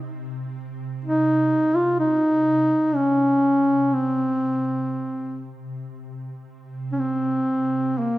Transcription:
Already playing: ambient pad C3
1.05 duduk D#4
1.75 duduk F4
2.00 duduk D#4
2.95 duduk C#4
3.93 duduk C4
5.98 ambient pad C3
6.92 duduk C#4
6.99 duduk C4
7.99 duduk A#3

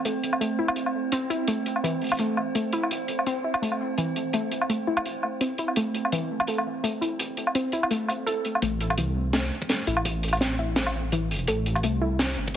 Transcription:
Already playing: synth drone C4
0.05 synth pluck A3, closed hi-hat
0.23 closed hi-hat
0.33 low woodblock
0.41 synth pluck A3, closed hi-hat
0.59 synth pluck E4
0.68 low woodblock
0.76 closed hi-hat
0.86 low woodblock
1.12 synth pluck C4, closed hi-hat
1.30 synth pluck E4, closed hi-hat
1.48 synth pluck A3, closed hi-hat
1.66 closed hi-hat
1.76 low woodblock
1.84 synth pluck E3, closed hi-hat
2.02 closed hi-hat
2.04 closed hi-hat
2.07 closed hi-hat
2.09 closed hi-hat
2.12 closed hi-hat, low woodblock
2.13 closed hi-hat
2.15 closed hi-hat
2.17 synth pluck A3, closed hi-hat
2.37 low woodblock
2.55 synth pluck A3, closed hi-hat
2.73 synth pluck E4, closed hi-hat
2.83 low woodblock
2.91 closed hi-hat
3.08 closed hi-hat
3.19 low woodblock
3.27 synth pluck C4, closed hi-hat
3.44 synth pluck E4
3.54 low woodblock
3.62 synth pluck A3, closed hi-hat
3.72 low woodblock
3.98 synth pluck E3, closed hi-hat
4.16 closed hi-hat
4.33 synth pluck A3, closed hi-hat
4.52 closed hi-hat
4.61 low woodblock
4.69 synth pluck A3, closed hi-hat
4.87 synth pluck E4
4.97 low woodblock
5.06 closed hi-hat
5.23 low woodblock
5.41 synth pluck C4, closed hi-hat
5.58 synth pluck E4, closed hi-hat
5.68 low woodblock
5.76 synth pluck A3, closed hi-hat
5.94 closed hi-hat
6.05 low woodblock
6.12 synth pluck E3, closed hi-hat
6.40 low woodblock
6.47 synth pluck A3, closed hi-hat
6.58 low woodblock
6.84 synth pluck A3, closed hi-hat
7.01 synth pluck E4, closed hi-hat
7.19 closed hi-hat
7.37 closed hi-hat
7.47 low woodblock
7.55 synth pluck C4, closed hi-hat
7.72 synth pluck E4, closed hi-hat
7.83 low woodblock
7.91 synth pluck A3, closed hi-hat
8.08 closed hi-hat, low woodblock
8.26 synth pluck A4, closed hi-hat
8.45 closed hi-hat
8.55 low woodblock
8.62 detuned saw bass A1, synth pluck A3, kick, closed hi-hat
8.81 closed hi-hat
8.90 kick, low woodblock
8.98 detuned saw bass C2, synth pluck E3, closed hi-hat
9.33 synth pluck A3, snare, closed hi-hat
9.62 kick
9.69 synth pluck A3, snare, closed hi-hat
9.87 detuned saw bass A1, synth pluck E4, closed hi-hat
9.97 low woodblock
10.05 kick, closed hi-hat
10.23 closed hi-hat
10.28 closed hi-hat
10.33 closed hi-hat, low woodblock
10.37 synth pluck C4, snare, closed hi-hat
10.41 closed hi-hat
10.59 synth pluck E4
10.76 synth pluck A3, snare, closed hi-hat
10.86 low woodblock
10.94 detuned saw bass A1
11.12 synth pluck E3, closed hi-hat
11.31 closed hi-hat
11.34 closed hi-hat
11.36 closed hi-hat
11.39 closed hi-hat
11.48 detuned saw bass A1, synth pluck A3, kick, closed hi-hat
11.66 closed hi-hat
11.75 kick, low woodblock
11.83 detuned saw bass C2, synth pluck A3, closed hi-hat
12.02 synth pluck E4
12.19 snare, closed hi-hat
12.37 detuned saw bass G1
12.48 kick

